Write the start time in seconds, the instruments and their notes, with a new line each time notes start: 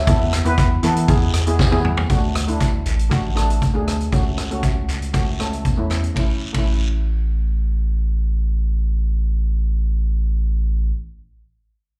0.05 sub bass E2, steel pan B3 E4 A4 E5, kick, closed hi-hat, long guiro
0.11 steel pan E5
0.19 steel pan E5
0.33 cross-stick, closed hi-hat, short guiro
0.45 sub bass E2, steel pan B3 E4 B4, closed hi-hat
0.58 kick, closed hi-hat, short guiro
0.83 sub bass E3, steel pan B3 E4 A4, closed hi-hat, short guiro
0.96 closed hi-hat
1.08 sub bass E2, steel pan B3 E4 G#4, kick, closed hi-hat, long guiro
1.34 sub bass E2, cross-stick, closed hi-hat
1.47 steel pan B3 E4 G#4, closed hi-hat
1.59 kick, snare, short guiro
1.71 sub bass E2, steel pan B3 E4 G#4, high tom
1.85 mid tom
1.97 sub bass E2, floor tom
2.09 sub bass D2, steel pan A3 D4 F#4, kick, closed hi-hat, long guiro
2.35 cross-stick, closed hi-hat
2.48 steel pan A3 D4 E4, closed hi-hat
2.60 sub bass D2, kick, closed hi-hat, short guiro
2.86 sub bass A1, closed hi-hat, short guiro
2.99 closed hi-hat
3.09 steel pan A3 D4 F#4, kick, closed hi-hat, short guiro, long guiro
3.35 steel pan A3 D4 A4, cross-stick, closed hi-hat
3.50 closed hi-hat
3.62 sub bass D2, kick, closed hi-hat
3.74 steel pan A3 D4 G#4
3.88 cross-stick, closed hi-hat
4.01 closed hi-hat
4.12 sub bass C#2, steel pan A3 C#4 F#4, kick, closed hi-hat, long guiro
4.38 cross-stick, closed hi-hat
4.51 steel pan A3 C#4 F#4, closed hi-hat
4.63 sub bass C#2, kick, closed hi-hat, short guiro
4.88 sub bass C#2, closed hi-hat, short guiro
5.02 closed hi-hat
5.13 steel pan A3 C#4 F#4, kick, closed hi-hat, short guiro, long guiro
5.39 steel pan A3 C#4 A4, cross-stick, closed hi-hat
5.53 closed hi-hat
5.65 sub bass E2, kick, closed hi-hat
5.78 steel pan A3 C#4 E4
5.90 cross-stick, closed hi-hat, short guiro
6.04 closed hi-hat
6.15 sub bass A1, steel pan A3 C#4, kick, ride, long guiro
6.19 steel pan E4
6.53 sub bass A1, steel pan A3 C#4, kick, ride
6.58 steel pan E4